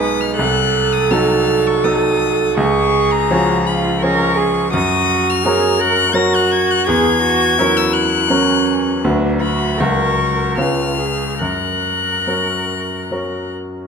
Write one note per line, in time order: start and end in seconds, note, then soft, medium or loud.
0.00 0.40 B1 medium
0.00 0.39 G#3 medium
0.00 0.39 D#4 medium
0.00 0.40 G#4 medium
0.00 0.36 B4 medium
0.00 0.22 D#6 loud
0.21 0.36 F6 medium
0.37 1.09 C2 medium
0.37 2.58 A4 loud
0.37 0.94 F#6 loud
0.92 1.12 D#6 loud
1.11 1.80 F#3 medium
1.11 1.80 D#4 medium
1.11 1.80 A4 medium
1.11 1.68 F6 loud
1.67 1.86 C#6 loud
1.84 2.52 F#3 medium
1.84 2.52 D#4 medium
1.84 2.53 A4 medium
1.84 2.56 D#6 loud
2.56 3.28 C#2 medium
2.56 3.33 G#4 loud
2.56 3.12 C#6 loud
3.10 3.68 A#5 loud
3.31 3.98 F3 medium
3.31 3.98 C#4 medium
3.31 3.67 F#4 medium
3.31 3.98 G#4 medium
3.66 4.00 F4 medium
3.66 4.04 B5 loud
4.01 4.70 F3 medium
4.01 4.70 C#4 medium
4.01 4.70 G#4 medium
4.01 4.37 A#4 loud
4.01 4.73 C#6 loud
4.36 4.72 G#4 medium
4.72 5.42 F#2 medium
4.72 5.45 F#4 loud
4.72 5.31 D#6 loud
5.30 5.82 F6 loud
5.43 6.11 F#3 medium
5.43 6.11 C#4 medium
5.43 5.81 G#4 loud
5.43 6.11 A#4 medium
5.79 6.12 A#4 loud
5.79 6.16 F#6 loud
6.12 6.83 F#3 medium
6.12 6.83 C#4 medium
6.12 6.88 F#4 loud
6.12 6.83 A#4 medium
6.12 6.36 A#6 loud
6.35 6.52 F#6 loud
6.51 6.72 G#6 loud
6.71 6.87 F#6 loud
6.86 7.57 E2 medium
6.86 7.22 G#4 loud
6.86 7.78 G#6 loud
7.22 7.59 F#4 loud
7.58 8.26 F#3 medium
7.58 8.27 C#4 medium
7.58 8.31 E4 medium
7.58 8.27 A#4 medium
7.77 7.94 E6 loud
7.93 9.03 F#6 loud
8.29 9.00 F#3 medium
8.29 9.04 C#4 medium
8.29 9.00 C#4 medium
8.29 9.00 A#4 medium
9.04 9.77 D2 medium
9.04 9.75 F#3 medium
9.04 9.42 D4 medium
9.04 9.75 F#4 medium
9.04 9.76 B4 medium
9.40 9.79 F#4 medium
9.40 9.82 B5 loud
9.78 10.55 C#2 medium
9.78 10.53 F#3 medium
9.78 10.53 F#4 medium
9.78 10.59 A#4 medium
9.78 10.54 A#4 medium
9.78 10.57 C#6 loud
10.57 11.37 C#2 medium
10.57 11.36 G#3 soft
10.57 11.36 C#4 medium
10.57 10.99 F4 medium
10.57 11.36 B4 medium
10.57 11.40 F6 medium
10.97 11.39 G#4 medium
11.39 12.24 F#2 medium
11.39 13.47 A#4 medium
11.39 13.51 F#6 medium
12.27 13.06 F#3 soft
12.27 13.06 C#4 soft
12.27 13.07 A#4 soft
13.11 13.87 F#3 soft
13.11 13.87 C#4 soft
13.11 13.87 A#4 soft